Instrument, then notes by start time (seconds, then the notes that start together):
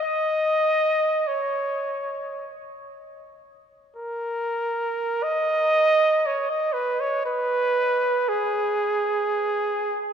trumpet
0.03 D#5
1.27 C#5
3.97 A#4
5.23 D#5
6.26 C#5
6.50 D#5
6.73 B4
7.01 C#5
7.26 B4
8.29 G#4